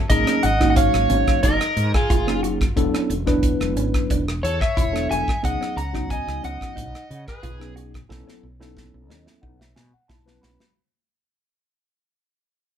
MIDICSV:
0, 0, Header, 1, 8, 480
1, 0, Start_track
1, 0, Tempo, 666223
1, 71, Time_signature, 4, 2, 24, 8
1, 9201, End_track
2, 0, Start_track
2, 0, Title_t, "Lead electric guitar"
2, 0, Program_c, 0, 29
2, 69, Note_on_c, 0, 75, 92
2, 310, Note_on_c, 0, 78, 91
2, 317, Note_off_c, 0, 75, 0
2, 497, Note_off_c, 0, 78, 0
2, 506, Note_on_c, 0, 78, 62
2, 552, Note_off_c, 0, 78, 0
2, 555, Note_on_c, 0, 77, 86
2, 1029, Note_on_c, 0, 75, 93
2, 1047, Note_off_c, 0, 77, 0
2, 1402, Note_on_c, 0, 68, 63
2, 1407, Note_off_c, 0, 75, 0
2, 1729, Note_off_c, 0, 68, 0
2, 3192, Note_on_c, 0, 73, 81
2, 3309, Note_off_c, 0, 73, 0
2, 3325, Note_on_c, 0, 76, 78
2, 3680, Note_on_c, 0, 80, 81
2, 3686, Note_off_c, 0, 76, 0
2, 3922, Note_off_c, 0, 80, 0
2, 3925, Note_on_c, 0, 78, 92
2, 4159, Note_on_c, 0, 82, 97
2, 4165, Note_off_c, 0, 78, 0
2, 4399, Note_on_c, 0, 80, 93
2, 4402, Note_off_c, 0, 82, 0
2, 4642, Note_off_c, 0, 80, 0
2, 4645, Note_on_c, 0, 78, 91
2, 5246, Note_on_c, 0, 71, 66
2, 5262, Note_off_c, 0, 78, 0
2, 5571, Note_off_c, 0, 71, 0
2, 9201, End_track
3, 0, Start_track
3, 0, Title_t, "Overdriven electric guitar"
3, 0, Program_c, 1, 29
3, 84, Note_on_c, 1, 70, 72
3, 301, Note_off_c, 1, 70, 0
3, 329, Note_on_c, 1, 75, 73
3, 499, Note_off_c, 1, 75, 0
3, 508, Note_on_c, 1, 75, 56
3, 550, Note_off_c, 1, 75, 0
3, 555, Note_on_c, 1, 73, 75
3, 1004, Note_off_c, 1, 73, 0
3, 1044, Note_on_c, 1, 70, 84
3, 1378, Note_off_c, 1, 70, 0
3, 1407, Note_on_c, 1, 65, 59
3, 1731, Note_off_c, 1, 65, 0
3, 3200, Note_on_c, 1, 69, 67
3, 3313, Note_off_c, 1, 69, 0
3, 3315, Note_on_c, 1, 73, 69
3, 3645, Note_off_c, 1, 73, 0
3, 3669, Note_on_c, 1, 76, 74
3, 3894, Note_off_c, 1, 76, 0
3, 3923, Note_on_c, 1, 75, 74
3, 4141, Note_off_c, 1, 75, 0
3, 4161, Note_on_c, 1, 78, 80
3, 4380, Note_off_c, 1, 78, 0
3, 4416, Note_on_c, 1, 75, 75
3, 4628, Note_off_c, 1, 75, 0
3, 4647, Note_on_c, 1, 75, 78
3, 5216, Note_off_c, 1, 75, 0
3, 5252, Note_on_c, 1, 68, 60
3, 5575, Note_off_c, 1, 68, 0
3, 9201, End_track
4, 0, Start_track
4, 0, Title_t, "Clean electric guitar"
4, 0, Program_c, 2, 27
4, 196, Note_on_c, 2, 61, 64
4, 404, Note_off_c, 2, 61, 0
4, 435, Note_on_c, 2, 63, 64
4, 644, Note_off_c, 2, 63, 0
4, 790, Note_on_c, 2, 61, 69
4, 998, Note_off_c, 2, 61, 0
4, 1034, Note_on_c, 2, 63, 71
4, 1241, Note_off_c, 2, 63, 0
4, 1513, Note_on_c, 2, 65, 71
4, 1720, Note_off_c, 2, 65, 0
4, 1750, Note_on_c, 2, 66, 69
4, 1958, Note_off_c, 2, 66, 0
4, 2119, Note_on_c, 2, 61, 64
4, 2326, Note_off_c, 2, 61, 0
4, 2358, Note_on_c, 2, 62, 67
4, 2565, Note_off_c, 2, 62, 0
4, 2716, Note_on_c, 2, 61, 68
4, 2922, Note_off_c, 2, 61, 0
4, 2960, Note_on_c, 2, 62, 75
4, 3164, Note_off_c, 2, 62, 0
4, 3436, Note_on_c, 2, 64, 71
4, 3642, Note_off_c, 2, 64, 0
4, 3677, Note_on_c, 2, 66, 71
4, 3882, Note_off_c, 2, 66, 0
4, 4042, Note_on_c, 2, 61, 69
4, 4248, Note_off_c, 2, 61, 0
4, 4282, Note_on_c, 2, 63, 69
4, 4488, Note_off_c, 2, 63, 0
4, 4638, Note_on_c, 2, 61, 64
4, 4843, Note_off_c, 2, 61, 0
4, 4870, Note_on_c, 2, 63, 78
4, 5079, Note_off_c, 2, 63, 0
4, 5353, Note_on_c, 2, 65, 73
4, 5560, Note_off_c, 2, 65, 0
4, 5589, Note_on_c, 2, 66, 69
4, 5798, Note_off_c, 2, 66, 0
4, 5961, Note_on_c, 2, 61, 65
4, 6168, Note_off_c, 2, 61, 0
4, 6201, Note_on_c, 2, 63, 68
4, 6408, Note_off_c, 2, 63, 0
4, 6557, Note_on_c, 2, 61, 64
4, 6763, Note_off_c, 2, 61, 0
4, 6793, Note_on_c, 2, 63, 73
4, 7001, Note_off_c, 2, 63, 0
4, 7271, Note_on_c, 2, 64, 76
4, 7480, Note_off_c, 2, 64, 0
4, 7516, Note_on_c, 2, 66, 68
4, 7722, Note_off_c, 2, 66, 0
4, 9201, End_track
5, 0, Start_track
5, 0, Title_t, "Tine electric piano"
5, 0, Program_c, 3, 4
5, 75, Note_on_c, 3, 58, 67
5, 76, Note_on_c, 3, 54, 66
5, 78, Note_on_c, 3, 61, 63
5, 78, Note_on_c, 3, 63, 63
5, 79, Note_on_c, 3, 68, 78
5, 334, Note_off_c, 3, 58, 0
5, 335, Note_off_c, 3, 54, 0
5, 335, Note_off_c, 3, 61, 0
5, 336, Note_off_c, 3, 63, 0
5, 336, Note_off_c, 3, 68, 0
5, 440, Note_on_c, 3, 61, 68
5, 440, Note_on_c, 3, 63, 61
5, 441, Note_on_c, 3, 54, 72
5, 441, Note_on_c, 3, 58, 61
5, 442, Note_on_c, 3, 66, 77
5, 1131, Note_off_c, 3, 63, 0
5, 1132, Note_off_c, 3, 54, 0
5, 1132, Note_off_c, 3, 58, 0
5, 1132, Note_off_c, 3, 61, 0
5, 1132, Note_off_c, 3, 66, 0
5, 1634, Note_on_c, 3, 58, 61
5, 1636, Note_on_c, 3, 54, 72
5, 1639, Note_on_c, 3, 61, 65
5, 1639, Note_on_c, 3, 68, 78
5, 1641, Note_on_c, 3, 63, 62
5, 1895, Note_off_c, 3, 58, 0
5, 1896, Note_off_c, 3, 54, 0
5, 1897, Note_off_c, 3, 61, 0
5, 1897, Note_off_c, 3, 68, 0
5, 1898, Note_off_c, 3, 63, 0
5, 1991, Note_on_c, 3, 59, 75
5, 1991, Note_on_c, 3, 62, 83
5, 1992, Note_on_c, 3, 54, 85
5, 1995, Note_on_c, 3, 64, 78
5, 1996, Note_on_c, 3, 69, 89
5, 2252, Note_off_c, 3, 59, 0
5, 2252, Note_off_c, 3, 62, 0
5, 2253, Note_off_c, 3, 54, 0
5, 2254, Note_off_c, 3, 64, 0
5, 2255, Note_off_c, 3, 69, 0
5, 2349, Note_on_c, 3, 54, 79
5, 2353, Note_on_c, 3, 59, 76
5, 2354, Note_on_c, 3, 64, 78
5, 2355, Note_on_c, 3, 71, 88
5, 2356, Note_on_c, 3, 62, 78
5, 3046, Note_off_c, 3, 54, 0
5, 3048, Note_off_c, 3, 59, 0
5, 3048, Note_off_c, 3, 64, 0
5, 3049, Note_off_c, 3, 71, 0
5, 3050, Note_off_c, 3, 62, 0
5, 3548, Note_on_c, 3, 62, 66
5, 3551, Note_on_c, 3, 59, 62
5, 3551, Note_on_c, 3, 64, 65
5, 3552, Note_on_c, 3, 54, 69
5, 3553, Note_on_c, 3, 69, 76
5, 3812, Note_off_c, 3, 62, 0
5, 3813, Note_off_c, 3, 59, 0
5, 3813, Note_off_c, 3, 64, 0
5, 3814, Note_off_c, 3, 54, 0
5, 3814, Note_off_c, 3, 69, 0
5, 3911, Note_on_c, 3, 54, 74
5, 3912, Note_on_c, 3, 61, 67
5, 3913, Note_on_c, 3, 59, 67
5, 3913, Note_on_c, 3, 63, 68
5, 3916, Note_on_c, 3, 68, 81
5, 4173, Note_off_c, 3, 54, 0
5, 4173, Note_off_c, 3, 61, 0
5, 4174, Note_off_c, 3, 59, 0
5, 4174, Note_off_c, 3, 63, 0
5, 4175, Note_off_c, 3, 68, 0
5, 4272, Note_on_c, 3, 54, 69
5, 4272, Note_on_c, 3, 59, 66
5, 4276, Note_on_c, 3, 61, 66
5, 4276, Note_on_c, 3, 66, 78
5, 4277, Note_on_c, 3, 63, 68
5, 4968, Note_off_c, 3, 54, 0
5, 4968, Note_off_c, 3, 59, 0
5, 4970, Note_off_c, 3, 61, 0
5, 4970, Note_off_c, 3, 63, 0
5, 4970, Note_off_c, 3, 66, 0
5, 5474, Note_on_c, 3, 54, 70
5, 5475, Note_on_c, 3, 61, 63
5, 5477, Note_on_c, 3, 59, 69
5, 5477, Note_on_c, 3, 68, 79
5, 5478, Note_on_c, 3, 63, 65
5, 5735, Note_off_c, 3, 54, 0
5, 5736, Note_off_c, 3, 61, 0
5, 5737, Note_off_c, 3, 59, 0
5, 5737, Note_off_c, 3, 63, 0
5, 5737, Note_off_c, 3, 68, 0
5, 5830, Note_on_c, 3, 54, 81
5, 5830, Note_on_c, 3, 59, 83
5, 5830, Note_on_c, 3, 61, 83
5, 5830, Note_on_c, 3, 64, 85
5, 5833, Note_on_c, 3, 69, 99
5, 6092, Note_off_c, 3, 54, 0
5, 6092, Note_off_c, 3, 59, 0
5, 6092, Note_off_c, 3, 64, 0
5, 6093, Note_off_c, 3, 61, 0
5, 6094, Note_off_c, 3, 69, 0
5, 6194, Note_on_c, 3, 54, 81
5, 6195, Note_on_c, 3, 59, 78
5, 6195, Note_on_c, 3, 61, 76
5, 6197, Note_on_c, 3, 64, 80
5, 6200, Note_on_c, 3, 69, 94
5, 6548, Note_on_c, 3, 75, 64
5, 6667, Note_off_c, 3, 75, 0
5, 6672, Note_on_c, 3, 76, 60
5, 6781, Note_off_c, 3, 76, 0
5, 6786, Note_on_c, 3, 78, 65
5, 6889, Note_off_c, 3, 54, 0
5, 6890, Note_off_c, 3, 59, 0
5, 6890, Note_off_c, 3, 61, 0
5, 6891, Note_off_c, 3, 64, 0
5, 6892, Note_off_c, 3, 69, 0
5, 6906, Note_off_c, 3, 78, 0
5, 6914, Note_on_c, 3, 76, 66
5, 7022, Note_off_c, 3, 76, 0
5, 7030, Note_on_c, 3, 80, 64
5, 7148, Note_off_c, 3, 80, 0
5, 7159, Note_on_c, 3, 78, 60
5, 7265, Note_off_c, 3, 78, 0
5, 7265, Note_on_c, 3, 81, 65
5, 7388, Note_on_c, 3, 54, 78
5, 7389, Note_on_c, 3, 59, 80
5, 7390, Note_on_c, 3, 61, 74
5, 7390, Note_on_c, 3, 64, 76
5, 7393, Note_on_c, 3, 71, 88
5, 7491, Note_off_c, 3, 81, 0
5, 7505, Note_on_c, 3, 83, 62
5, 7652, Note_off_c, 3, 54, 0
5, 7653, Note_off_c, 3, 59, 0
5, 7654, Note_off_c, 3, 61, 0
5, 7654, Note_off_c, 3, 64, 0
5, 7655, Note_off_c, 3, 71, 0
5, 7732, Note_off_c, 3, 83, 0
5, 9201, End_track
6, 0, Start_track
6, 0, Title_t, "Fretless electric bass"
6, 0, Program_c, 4, 35
6, 70, Note_on_c, 4, 32, 87
6, 183, Note_off_c, 4, 32, 0
6, 315, Note_on_c, 4, 32, 74
6, 640, Note_off_c, 4, 32, 0
6, 679, Note_on_c, 4, 32, 70
6, 780, Note_off_c, 4, 32, 0
6, 793, Note_on_c, 4, 32, 82
6, 904, Note_off_c, 4, 32, 0
6, 1032, Note_on_c, 4, 30, 87
6, 1144, Note_off_c, 4, 30, 0
6, 1272, Note_on_c, 4, 44, 77
6, 1384, Note_off_c, 4, 44, 0
6, 1515, Note_on_c, 4, 30, 88
6, 1942, Note_off_c, 4, 30, 0
6, 1994, Note_on_c, 4, 28, 96
6, 2105, Note_off_c, 4, 28, 0
6, 2231, Note_on_c, 4, 28, 84
6, 2557, Note_off_c, 4, 28, 0
6, 2597, Note_on_c, 4, 28, 86
6, 2706, Note_off_c, 4, 28, 0
6, 2706, Note_on_c, 4, 32, 80
6, 2821, Note_off_c, 4, 32, 0
6, 2956, Note_on_c, 4, 28, 95
6, 3168, Note_off_c, 4, 28, 0
6, 3194, Note_on_c, 4, 40, 76
6, 3305, Note_off_c, 4, 40, 0
6, 3439, Note_on_c, 4, 28, 81
6, 3650, Note_off_c, 4, 28, 0
6, 3679, Note_on_c, 4, 28, 73
6, 3788, Note_off_c, 4, 28, 0
6, 3919, Note_on_c, 4, 37, 86
6, 4028, Note_off_c, 4, 37, 0
6, 4154, Note_on_c, 4, 37, 82
6, 4479, Note_off_c, 4, 37, 0
6, 4521, Note_on_c, 4, 37, 78
6, 4621, Note_off_c, 4, 37, 0
6, 4640, Note_on_c, 4, 37, 82
6, 4749, Note_off_c, 4, 37, 0
6, 4880, Note_on_c, 4, 35, 84
6, 4988, Note_off_c, 4, 35, 0
6, 5119, Note_on_c, 4, 49, 81
6, 5228, Note_off_c, 4, 49, 0
6, 5357, Note_on_c, 4, 35, 92
6, 5783, Note_off_c, 4, 35, 0
6, 5838, Note_on_c, 4, 35, 97
6, 5948, Note_off_c, 4, 35, 0
6, 6074, Note_on_c, 4, 35, 82
6, 6400, Note_off_c, 4, 35, 0
6, 6442, Note_on_c, 4, 35, 82
6, 6557, Note_off_c, 4, 35, 0
6, 6557, Note_on_c, 4, 39, 81
6, 6667, Note_off_c, 4, 39, 0
6, 6793, Note_on_c, 4, 35, 93
6, 7007, Note_off_c, 4, 35, 0
6, 7036, Note_on_c, 4, 47, 81
6, 7147, Note_off_c, 4, 47, 0
6, 7272, Note_on_c, 4, 35, 77
6, 7486, Note_off_c, 4, 35, 0
6, 7516, Note_on_c, 4, 35, 72
6, 7627, Note_off_c, 4, 35, 0
6, 9201, End_track
7, 0, Start_track
7, 0, Title_t, "Muted fretless electric bass strokes"
7, 2114, Note_on_c, 9, 29, 33
7, 2186, Note_off_c, 9, 29, 0
7, 3323, Note_on_c, 9, 29, 34
7, 3395, Note_off_c, 9, 29, 0
7, 7159, Note_on_c, 9, 29, 33
7, 7231, Note_off_c, 9, 29, 0
7, 7647, Note_on_c, 9, 29, 35
7, 7719, Note_off_c, 9, 29, 0
7, 9201, End_track
8, 0, Start_track
8, 0, Title_t, "Drums"
8, 70, Note_on_c, 9, 42, 76
8, 72, Note_on_c, 9, 36, 76
8, 142, Note_off_c, 9, 42, 0
8, 144, Note_off_c, 9, 36, 0
8, 195, Note_on_c, 9, 42, 40
8, 197, Note_on_c, 9, 37, 83
8, 267, Note_off_c, 9, 42, 0
8, 269, Note_off_c, 9, 37, 0
8, 310, Note_on_c, 9, 42, 60
8, 382, Note_off_c, 9, 42, 0
8, 438, Note_on_c, 9, 36, 71
8, 438, Note_on_c, 9, 42, 36
8, 440, Note_on_c, 9, 37, 72
8, 510, Note_off_c, 9, 36, 0
8, 510, Note_off_c, 9, 42, 0
8, 512, Note_off_c, 9, 37, 0
8, 550, Note_on_c, 9, 42, 80
8, 551, Note_on_c, 9, 36, 96
8, 622, Note_off_c, 9, 42, 0
8, 623, Note_off_c, 9, 36, 0
8, 675, Note_on_c, 9, 42, 35
8, 677, Note_on_c, 9, 37, 75
8, 747, Note_off_c, 9, 42, 0
8, 749, Note_off_c, 9, 37, 0
8, 790, Note_on_c, 9, 42, 60
8, 862, Note_off_c, 9, 42, 0
8, 918, Note_on_c, 9, 36, 75
8, 918, Note_on_c, 9, 42, 34
8, 920, Note_on_c, 9, 37, 75
8, 990, Note_off_c, 9, 36, 0
8, 990, Note_off_c, 9, 42, 0
8, 992, Note_off_c, 9, 37, 0
8, 1031, Note_on_c, 9, 42, 74
8, 1033, Note_on_c, 9, 36, 79
8, 1103, Note_off_c, 9, 42, 0
8, 1105, Note_off_c, 9, 36, 0
8, 1157, Note_on_c, 9, 42, 34
8, 1159, Note_on_c, 9, 37, 83
8, 1229, Note_off_c, 9, 42, 0
8, 1232, Note_off_c, 9, 37, 0
8, 1273, Note_on_c, 9, 42, 54
8, 1345, Note_off_c, 9, 42, 0
8, 1399, Note_on_c, 9, 36, 78
8, 1401, Note_on_c, 9, 37, 79
8, 1472, Note_off_c, 9, 36, 0
8, 1473, Note_off_c, 9, 37, 0
8, 1514, Note_on_c, 9, 36, 105
8, 1518, Note_on_c, 9, 42, 75
8, 1586, Note_off_c, 9, 36, 0
8, 1590, Note_off_c, 9, 42, 0
8, 1643, Note_on_c, 9, 37, 75
8, 1716, Note_off_c, 9, 37, 0
8, 1757, Note_on_c, 9, 42, 55
8, 1829, Note_off_c, 9, 42, 0
8, 1879, Note_on_c, 9, 36, 74
8, 1882, Note_on_c, 9, 42, 34
8, 1884, Note_on_c, 9, 37, 76
8, 1951, Note_off_c, 9, 36, 0
8, 1954, Note_off_c, 9, 42, 0
8, 1956, Note_off_c, 9, 37, 0
8, 1994, Note_on_c, 9, 36, 75
8, 1997, Note_on_c, 9, 42, 67
8, 2066, Note_off_c, 9, 36, 0
8, 2069, Note_off_c, 9, 42, 0
8, 2121, Note_on_c, 9, 42, 37
8, 2123, Note_on_c, 9, 37, 83
8, 2193, Note_off_c, 9, 42, 0
8, 2195, Note_off_c, 9, 37, 0
8, 2236, Note_on_c, 9, 42, 56
8, 2308, Note_off_c, 9, 42, 0
8, 2357, Note_on_c, 9, 42, 31
8, 2358, Note_on_c, 9, 36, 70
8, 2359, Note_on_c, 9, 37, 72
8, 2429, Note_off_c, 9, 42, 0
8, 2430, Note_off_c, 9, 36, 0
8, 2431, Note_off_c, 9, 37, 0
8, 2470, Note_on_c, 9, 42, 73
8, 2471, Note_on_c, 9, 36, 92
8, 2542, Note_off_c, 9, 42, 0
8, 2543, Note_off_c, 9, 36, 0
8, 2599, Note_on_c, 9, 42, 32
8, 2601, Note_on_c, 9, 37, 74
8, 2671, Note_off_c, 9, 42, 0
8, 2673, Note_off_c, 9, 37, 0
8, 2713, Note_on_c, 9, 42, 56
8, 2785, Note_off_c, 9, 42, 0
8, 2840, Note_on_c, 9, 36, 74
8, 2840, Note_on_c, 9, 42, 34
8, 2842, Note_on_c, 9, 37, 78
8, 2912, Note_off_c, 9, 36, 0
8, 2912, Note_off_c, 9, 42, 0
8, 2914, Note_off_c, 9, 37, 0
8, 2956, Note_on_c, 9, 36, 75
8, 2957, Note_on_c, 9, 42, 72
8, 3028, Note_off_c, 9, 36, 0
8, 3029, Note_off_c, 9, 42, 0
8, 3087, Note_on_c, 9, 37, 83
8, 3159, Note_off_c, 9, 37, 0
8, 3203, Note_on_c, 9, 42, 56
8, 3275, Note_off_c, 9, 42, 0
8, 3323, Note_on_c, 9, 36, 81
8, 3330, Note_on_c, 9, 37, 79
8, 3395, Note_off_c, 9, 36, 0
8, 3402, Note_off_c, 9, 37, 0
8, 3437, Note_on_c, 9, 36, 103
8, 3442, Note_on_c, 9, 42, 77
8, 3510, Note_off_c, 9, 36, 0
8, 3514, Note_off_c, 9, 42, 0
8, 3570, Note_on_c, 9, 42, 37
8, 3572, Note_on_c, 9, 37, 72
8, 3642, Note_off_c, 9, 42, 0
8, 3644, Note_off_c, 9, 37, 0
8, 3685, Note_on_c, 9, 42, 59
8, 3757, Note_off_c, 9, 42, 0
8, 3804, Note_on_c, 9, 36, 76
8, 3813, Note_on_c, 9, 37, 75
8, 3876, Note_off_c, 9, 36, 0
8, 3885, Note_off_c, 9, 37, 0
8, 3918, Note_on_c, 9, 36, 73
8, 3924, Note_on_c, 9, 42, 83
8, 3990, Note_off_c, 9, 36, 0
8, 3996, Note_off_c, 9, 42, 0
8, 4052, Note_on_c, 9, 42, 39
8, 4054, Note_on_c, 9, 37, 81
8, 4124, Note_off_c, 9, 42, 0
8, 4126, Note_off_c, 9, 37, 0
8, 4162, Note_on_c, 9, 42, 58
8, 4234, Note_off_c, 9, 42, 0
8, 4284, Note_on_c, 9, 36, 72
8, 4287, Note_on_c, 9, 42, 36
8, 4289, Note_on_c, 9, 37, 70
8, 4356, Note_off_c, 9, 36, 0
8, 4359, Note_off_c, 9, 42, 0
8, 4361, Note_off_c, 9, 37, 0
8, 4397, Note_on_c, 9, 36, 96
8, 4398, Note_on_c, 9, 42, 72
8, 4469, Note_off_c, 9, 36, 0
8, 4470, Note_off_c, 9, 42, 0
8, 4526, Note_on_c, 9, 42, 35
8, 4529, Note_on_c, 9, 37, 75
8, 4598, Note_off_c, 9, 42, 0
8, 4601, Note_off_c, 9, 37, 0
8, 4640, Note_on_c, 9, 42, 58
8, 4712, Note_off_c, 9, 42, 0
8, 4763, Note_on_c, 9, 36, 71
8, 4769, Note_on_c, 9, 42, 36
8, 4771, Note_on_c, 9, 37, 74
8, 4835, Note_off_c, 9, 36, 0
8, 4841, Note_off_c, 9, 42, 0
8, 4843, Note_off_c, 9, 37, 0
8, 4878, Note_on_c, 9, 36, 79
8, 4883, Note_on_c, 9, 42, 83
8, 4950, Note_off_c, 9, 36, 0
8, 4955, Note_off_c, 9, 42, 0
8, 5007, Note_on_c, 9, 42, 37
8, 5009, Note_on_c, 9, 37, 75
8, 5079, Note_off_c, 9, 42, 0
8, 5081, Note_off_c, 9, 37, 0
8, 5122, Note_on_c, 9, 42, 55
8, 5194, Note_off_c, 9, 42, 0
8, 5243, Note_on_c, 9, 36, 75
8, 5246, Note_on_c, 9, 37, 80
8, 5315, Note_off_c, 9, 36, 0
8, 5318, Note_off_c, 9, 37, 0
8, 5355, Note_on_c, 9, 42, 79
8, 5356, Note_on_c, 9, 36, 107
8, 5427, Note_off_c, 9, 42, 0
8, 5428, Note_off_c, 9, 36, 0
8, 5486, Note_on_c, 9, 37, 77
8, 5558, Note_off_c, 9, 37, 0
8, 5597, Note_on_c, 9, 42, 50
8, 5669, Note_off_c, 9, 42, 0
8, 5723, Note_on_c, 9, 36, 77
8, 5727, Note_on_c, 9, 42, 33
8, 5729, Note_on_c, 9, 37, 77
8, 5795, Note_off_c, 9, 36, 0
8, 5799, Note_off_c, 9, 42, 0
8, 5801, Note_off_c, 9, 37, 0
8, 5837, Note_on_c, 9, 36, 80
8, 5843, Note_on_c, 9, 38, 55
8, 5909, Note_off_c, 9, 36, 0
8, 5915, Note_off_c, 9, 38, 0
8, 5970, Note_on_c, 9, 38, 47
8, 6042, Note_off_c, 9, 38, 0
8, 6206, Note_on_c, 9, 38, 50
8, 6278, Note_off_c, 9, 38, 0
8, 6316, Note_on_c, 9, 36, 97
8, 6321, Note_on_c, 9, 38, 61
8, 6388, Note_off_c, 9, 36, 0
8, 6393, Note_off_c, 9, 38, 0
8, 6559, Note_on_c, 9, 38, 70
8, 6631, Note_off_c, 9, 38, 0
8, 6681, Note_on_c, 9, 38, 53
8, 6753, Note_off_c, 9, 38, 0
8, 6794, Note_on_c, 9, 36, 79
8, 6866, Note_off_c, 9, 36, 0
8, 6924, Note_on_c, 9, 38, 64
8, 6996, Note_off_c, 9, 38, 0
8, 7035, Note_on_c, 9, 38, 80
8, 7107, Note_off_c, 9, 38, 0
8, 7273, Note_on_c, 9, 36, 109
8, 7275, Note_on_c, 9, 38, 84
8, 7346, Note_off_c, 9, 36, 0
8, 7347, Note_off_c, 9, 38, 0
8, 7404, Note_on_c, 9, 38, 75
8, 7476, Note_off_c, 9, 38, 0
8, 7516, Note_on_c, 9, 38, 82
8, 7588, Note_off_c, 9, 38, 0
8, 7640, Note_on_c, 9, 38, 73
8, 7712, Note_off_c, 9, 38, 0
8, 9201, End_track
0, 0, End_of_file